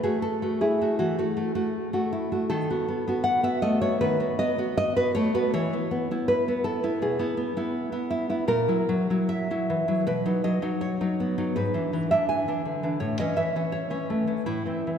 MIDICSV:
0, 0, Header, 1, 2, 480
1, 0, Start_track
1, 0, Key_signature, 4, "major"
1, 0, Tempo, 758534
1, 1583, Time_signature, 4, 2, 24, 8
1, 3508, Tempo, 729927
1, 5428, Tempo, 824176
1, 5908, Tempo, 756620
1, 6388, Tempo, 737101
1, 9268, Tempo, 820793
1, 9568, End_track
2, 0, Start_track
2, 0, Title_t, "Nylon-string guitar"
2, 0, Program_c, 0, 24
2, 22, Note_on_c, 0, 68, 97
2, 26, Note_on_c, 0, 57, 61
2, 27, Note_on_c, 0, 66, 72
2, 138, Note_off_c, 0, 68, 0
2, 141, Note_on_c, 0, 69, 95
2, 260, Note_off_c, 0, 57, 0
2, 265, Note_off_c, 0, 66, 0
2, 267, Note_on_c, 0, 57, 58
2, 273, Note_on_c, 0, 66, 61
2, 376, Note_off_c, 0, 69, 0
2, 386, Note_on_c, 0, 68, 89
2, 389, Note_on_c, 0, 64, 60
2, 508, Note_off_c, 0, 57, 0
2, 509, Note_off_c, 0, 66, 0
2, 515, Note_on_c, 0, 57, 61
2, 517, Note_on_c, 0, 66, 69
2, 615, Note_off_c, 0, 68, 0
2, 618, Note_off_c, 0, 66, 0
2, 626, Note_on_c, 0, 66, 85
2, 630, Note_on_c, 0, 52, 70
2, 743, Note_off_c, 0, 52, 0
2, 743, Note_off_c, 0, 57, 0
2, 748, Note_off_c, 0, 66, 0
2, 750, Note_on_c, 0, 57, 63
2, 755, Note_on_c, 0, 66, 72
2, 858, Note_off_c, 0, 57, 0
2, 865, Note_on_c, 0, 57, 68
2, 974, Note_off_c, 0, 57, 0
2, 974, Note_off_c, 0, 66, 0
2, 982, Note_on_c, 0, 57, 71
2, 982, Note_on_c, 0, 66, 71
2, 1099, Note_off_c, 0, 64, 0
2, 1215, Note_off_c, 0, 57, 0
2, 1219, Note_off_c, 0, 66, 0
2, 1222, Note_on_c, 0, 57, 64
2, 1227, Note_on_c, 0, 66, 74
2, 1345, Note_on_c, 0, 64, 73
2, 1460, Note_off_c, 0, 57, 0
2, 1460, Note_off_c, 0, 66, 0
2, 1467, Note_on_c, 0, 57, 56
2, 1468, Note_on_c, 0, 66, 70
2, 1574, Note_off_c, 0, 57, 0
2, 1574, Note_off_c, 0, 66, 0
2, 1579, Note_on_c, 0, 69, 101
2, 1583, Note_on_c, 0, 51, 86
2, 1585, Note_off_c, 0, 64, 0
2, 1700, Note_off_c, 0, 51, 0
2, 1711, Note_on_c, 0, 59, 59
2, 1712, Note_on_c, 0, 66, 67
2, 1818, Note_off_c, 0, 59, 0
2, 1825, Note_on_c, 0, 59, 66
2, 1938, Note_off_c, 0, 59, 0
2, 1945, Note_off_c, 0, 66, 0
2, 1946, Note_on_c, 0, 59, 62
2, 1953, Note_on_c, 0, 66, 74
2, 2038, Note_off_c, 0, 69, 0
2, 2048, Note_on_c, 0, 78, 111
2, 2165, Note_off_c, 0, 59, 0
2, 2168, Note_off_c, 0, 66, 0
2, 2172, Note_off_c, 0, 78, 0
2, 2172, Note_on_c, 0, 59, 62
2, 2176, Note_on_c, 0, 66, 68
2, 2177, Note_on_c, 0, 76, 104
2, 2289, Note_off_c, 0, 76, 0
2, 2291, Note_on_c, 0, 75, 107
2, 2295, Note_on_c, 0, 57, 71
2, 2407, Note_off_c, 0, 59, 0
2, 2410, Note_off_c, 0, 66, 0
2, 2412, Note_off_c, 0, 75, 0
2, 2414, Note_on_c, 0, 59, 68
2, 2414, Note_on_c, 0, 73, 95
2, 2417, Note_on_c, 0, 66, 60
2, 2534, Note_off_c, 0, 73, 0
2, 2535, Note_on_c, 0, 51, 76
2, 2536, Note_on_c, 0, 71, 107
2, 2649, Note_off_c, 0, 59, 0
2, 2653, Note_off_c, 0, 66, 0
2, 2656, Note_off_c, 0, 51, 0
2, 2657, Note_on_c, 0, 59, 67
2, 2660, Note_on_c, 0, 66, 68
2, 2772, Note_off_c, 0, 71, 0
2, 2773, Note_off_c, 0, 59, 0
2, 2777, Note_on_c, 0, 75, 113
2, 2781, Note_on_c, 0, 59, 74
2, 2892, Note_off_c, 0, 59, 0
2, 2896, Note_off_c, 0, 66, 0
2, 2900, Note_on_c, 0, 59, 64
2, 2904, Note_on_c, 0, 66, 79
2, 3014, Note_off_c, 0, 75, 0
2, 3021, Note_on_c, 0, 75, 119
2, 3029, Note_off_c, 0, 57, 0
2, 3139, Note_off_c, 0, 75, 0
2, 3140, Note_off_c, 0, 59, 0
2, 3140, Note_off_c, 0, 66, 0
2, 3142, Note_on_c, 0, 71, 105
2, 3147, Note_on_c, 0, 66, 76
2, 3148, Note_on_c, 0, 59, 73
2, 3254, Note_off_c, 0, 71, 0
2, 3257, Note_on_c, 0, 73, 119
2, 3265, Note_on_c, 0, 57, 74
2, 3374, Note_off_c, 0, 59, 0
2, 3377, Note_off_c, 0, 66, 0
2, 3381, Note_off_c, 0, 73, 0
2, 3381, Note_on_c, 0, 59, 66
2, 3383, Note_on_c, 0, 71, 96
2, 3384, Note_on_c, 0, 66, 77
2, 3492, Note_off_c, 0, 59, 0
2, 3494, Note_off_c, 0, 66, 0
2, 3500, Note_off_c, 0, 71, 0
2, 3503, Note_on_c, 0, 73, 115
2, 3506, Note_off_c, 0, 57, 0
2, 3507, Note_on_c, 0, 52, 85
2, 3626, Note_off_c, 0, 52, 0
2, 3632, Note_on_c, 0, 64, 68
2, 3635, Note_on_c, 0, 59, 66
2, 3742, Note_off_c, 0, 59, 0
2, 3750, Note_on_c, 0, 59, 73
2, 3873, Note_off_c, 0, 59, 0
2, 3876, Note_off_c, 0, 64, 0
2, 3881, Note_on_c, 0, 59, 60
2, 3884, Note_on_c, 0, 64, 72
2, 3970, Note_off_c, 0, 73, 0
2, 3993, Note_on_c, 0, 71, 99
2, 4116, Note_off_c, 0, 59, 0
2, 4119, Note_off_c, 0, 64, 0
2, 4124, Note_on_c, 0, 59, 63
2, 4127, Note_on_c, 0, 64, 64
2, 4221, Note_off_c, 0, 71, 0
2, 4225, Note_off_c, 0, 64, 0
2, 4230, Note_on_c, 0, 69, 93
2, 4235, Note_on_c, 0, 64, 66
2, 4350, Note_off_c, 0, 59, 0
2, 4351, Note_off_c, 0, 64, 0
2, 4357, Note_on_c, 0, 59, 64
2, 4360, Note_on_c, 0, 64, 71
2, 4459, Note_off_c, 0, 69, 0
2, 4478, Note_on_c, 0, 47, 71
2, 4481, Note_on_c, 0, 68, 88
2, 4585, Note_off_c, 0, 59, 0
2, 4590, Note_off_c, 0, 47, 0
2, 4590, Note_off_c, 0, 64, 0
2, 4593, Note_on_c, 0, 59, 74
2, 4598, Note_on_c, 0, 64, 70
2, 4703, Note_off_c, 0, 59, 0
2, 4711, Note_on_c, 0, 59, 69
2, 4831, Note_off_c, 0, 59, 0
2, 4834, Note_off_c, 0, 64, 0
2, 4839, Note_on_c, 0, 59, 68
2, 4842, Note_on_c, 0, 64, 78
2, 5065, Note_off_c, 0, 59, 0
2, 5066, Note_off_c, 0, 64, 0
2, 5072, Note_on_c, 0, 59, 67
2, 5075, Note_on_c, 0, 64, 67
2, 5165, Note_off_c, 0, 68, 0
2, 5184, Note_off_c, 0, 64, 0
2, 5192, Note_on_c, 0, 64, 82
2, 5309, Note_off_c, 0, 59, 0
2, 5312, Note_off_c, 0, 64, 0
2, 5317, Note_on_c, 0, 59, 68
2, 5320, Note_on_c, 0, 64, 72
2, 5423, Note_off_c, 0, 59, 0
2, 5424, Note_off_c, 0, 64, 0
2, 5435, Note_on_c, 0, 46, 92
2, 5438, Note_on_c, 0, 70, 105
2, 5543, Note_off_c, 0, 46, 0
2, 5556, Note_on_c, 0, 54, 59
2, 5560, Note_on_c, 0, 64, 70
2, 5669, Note_off_c, 0, 54, 0
2, 5676, Note_on_c, 0, 54, 77
2, 5794, Note_off_c, 0, 54, 0
2, 5794, Note_off_c, 0, 64, 0
2, 5800, Note_on_c, 0, 54, 58
2, 5803, Note_on_c, 0, 64, 65
2, 5893, Note_off_c, 0, 70, 0
2, 5909, Note_on_c, 0, 76, 105
2, 6039, Note_off_c, 0, 54, 0
2, 6042, Note_off_c, 0, 64, 0
2, 6047, Note_on_c, 0, 54, 63
2, 6050, Note_on_c, 0, 64, 65
2, 6168, Note_on_c, 0, 52, 61
2, 6276, Note_off_c, 0, 54, 0
2, 6279, Note_off_c, 0, 64, 0
2, 6284, Note_on_c, 0, 54, 56
2, 6286, Note_on_c, 0, 64, 58
2, 6369, Note_off_c, 0, 76, 0
2, 6384, Note_off_c, 0, 54, 0
2, 6386, Note_off_c, 0, 64, 0
2, 6397, Note_off_c, 0, 52, 0
2, 6402, Note_on_c, 0, 47, 83
2, 6405, Note_on_c, 0, 71, 98
2, 6514, Note_off_c, 0, 47, 0
2, 6526, Note_on_c, 0, 54, 70
2, 6528, Note_on_c, 0, 63, 66
2, 6630, Note_off_c, 0, 71, 0
2, 6641, Note_off_c, 0, 54, 0
2, 6646, Note_on_c, 0, 75, 96
2, 6649, Note_on_c, 0, 54, 65
2, 6757, Note_off_c, 0, 54, 0
2, 6758, Note_off_c, 0, 63, 0
2, 6764, Note_on_c, 0, 54, 66
2, 6767, Note_on_c, 0, 63, 71
2, 6873, Note_off_c, 0, 75, 0
2, 6887, Note_on_c, 0, 73, 97
2, 7008, Note_off_c, 0, 54, 0
2, 7009, Note_off_c, 0, 63, 0
2, 7015, Note_on_c, 0, 54, 69
2, 7018, Note_on_c, 0, 63, 64
2, 7141, Note_on_c, 0, 59, 70
2, 7249, Note_off_c, 0, 63, 0
2, 7250, Note_off_c, 0, 54, 0
2, 7257, Note_on_c, 0, 54, 64
2, 7257, Note_on_c, 0, 63, 64
2, 7349, Note_off_c, 0, 73, 0
2, 7359, Note_off_c, 0, 54, 0
2, 7359, Note_off_c, 0, 63, 0
2, 7373, Note_off_c, 0, 59, 0
2, 7374, Note_on_c, 0, 71, 93
2, 7379, Note_on_c, 0, 44, 72
2, 7488, Note_off_c, 0, 44, 0
2, 7493, Note_on_c, 0, 52, 58
2, 7499, Note_on_c, 0, 62, 61
2, 7609, Note_off_c, 0, 52, 0
2, 7617, Note_on_c, 0, 52, 66
2, 7716, Note_off_c, 0, 71, 0
2, 7724, Note_off_c, 0, 52, 0
2, 7731, Note_off_c, 0, 62, 0
2, 7732, Note_on_c, 0, 52, 52
2, 7733, Note_on_c, 0, 76, 94
2, 7739, Note_on_c, 0, 62, 57
2, 7846, Note_off_c, 0, 76, 0
2, 7849, Note_on_c, 0, 80, 95
2, 7965, Note_off_c, 0, 52, 0
2, 7969, Note_off_c, 0, 62, 0
2, 7973, Note_on_c, 0, 52, 52
2, 7977, Note_on_c, 0, 62, 60
2, 8085, Note_off_c, 0, 62, 0
2, 8087, Note_on_c, 0, 50, 51
2, 8196, Note_off_c, 0, 52, 0
2, 8204, Note_on_c, 0, 52, 54
2, 8208, Note_on_c, 0, 62, 57
2, 8298, Note_off_c, 0, 80, 0
2, 8306, Note_off_c, 0, 52, 0
2, 8309, Note_off_c, 0, 62, 0
2, 8313, Note_on_c, 0, 73, 90
2, 8316, Note_on_c, 0, 45, 63
2, 8318, Note_off_c, 0, 50, 0
2, 8429, Note_off_c, 0, 45, 0
2, 8431, Note_off_c, 0, 73, 0
2, 8440, Note_on_c, 0, 75, 86
2, 8444, Note_on_c, 0, 52, 57
2, 8447, Note_on_c, 0, 61, 66
2, 8550, Note_off_c, 0, 52, 0
2, 8552, Note_on_c, 0, 76, 95
2, 8555, Note_off_c, 0, 75, 0
2, 8558, Note_on_c, 0, 52, 54
2, 8669, Note_off_c, 0, 52, 0
2, 8670, Note_off_c, 0, 61, 0
2, 8676, Note_on_c, 0, 52, 57
2, 8679, Note_on_c, 0, 61, 57
2, 8780, Note_off_c, 0, 76, 0
2, 8783, Note_on_c, 0, 73, 96
2, 8893, Note_off_c, 0, 52, 0
2, 8897, Note_off_c, 0, 61, 0
2, 8901, Note_on_c, 0, 52, 50
2, 8904, Note_on_c, 0, 61, 66
2, 9029, Note_on_c, 0, 57, 61
2, 9134, Note_off_c, 0, 52, 0
2, 9137, Note_off_c, 0, 61, 0
2, 9142, Note_on_c, 0, 52, 52
2, 9145, Note_on_c, 0, 61, 57
2, 9247, Note_off_c, 0, 73, 0
2, 9255, Note_off_c, 0, 52, 0
2, 9256, Note_off_c, 0, 61, 0
2, 9264, Note_off_c, 0, 57, 0
2, 9264, Note_on_c, 0, 64, 77
2, 9267, Note_on_c, 0, 45, 76
2, 9379, Note_on_c, 0, 52, 45
2, 9380, Note_off_c, 0, 45, 0
2, 9384, Note_on_c, 0, 60, 45
2, 9497, Note_off_c, 0, 52, 0
2, 9504, Note_on_c, 0, 52, 52
2, 9568, Note_off_c, 0, 52, 0
2, 9568, Note_off_c, 0, 60, 0
2, 9568, Note_off_c, 0, 64, 0
2, 9568, End_track
0, 0, End_of_file